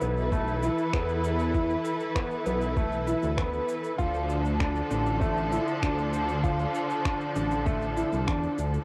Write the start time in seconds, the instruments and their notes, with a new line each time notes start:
Already playing: string section E3 E4 A4 B4
0.01 detuned saw bass B1, grand piano B3, shaker
0.17 shaker
0.32 grand piano A3, kick, shaker
0.47 shaker
0.62 grand piano E4, shaker
0.78 shaker
0.93 detuned saw bass E2, grand piano B3, finger snap, kick, shaker
1.09 shaker
1.24 shaker
1.39 shaker
1.54 grand piano E4, kick, shaker
1.70 shaker
1.85 shaker
2.00 shaker
2.15 grand piano B3, finger snap, kick, shaker
2.31 shaker
2.46 detuned saw bass B1, grand piano B3, shaker
2.61 shaker
2.77 grand piano A3, kick, shaker
2.92 shaker
3.07 grand piano E4, shaker
3.23 detuned saw bass D2, shaker
3.37 grand piano B3, finger snap, kick, shaker
3.53 shaker
3.69 shaker
3.84 shaker
3.98 detuned saw bass D2, string section D3 F3 D4 A4, grand piano F4, kick, shaker
4.14 shaker
4.30 shaker
4.45 shaker
4.60 grand piano D4, finger snap, kick, shaker
4.76 shaker
4.91 detuned saw bass A1, grand piano D4, shaker
5.06 shaker
5.21 grand piano A3, kick, shaker
5.37 shaker
5.52 grand piano E4, shaker
5.68 shaker
5.82 detuned saw bass D2, grand piano D4, finger snap, kick, shaker
5.99 shaker
6.14 shaker
6.29 shaker
6.44 grand piano F4, kick, shaker
6.59 shaker
6.75 shaker
6.90 shaker
7.05 grand piano D4, finger snap, kick, shaker
7.21 shaker
7.36 detuned saw bass A1, grand piano D4, shaker
7.51 shaker
7.66 grand piano A3, kick, shaker
7.82 shaker
7.97 grand piano E4, shaker
8.13 detuned saw bass C2, shaker
8.27 detuned saw bass E2, grand piano D4, finger snap, kick, shaker
8.43 shaker
8.58 detuned saw bass D2, shaker
8.74 shaker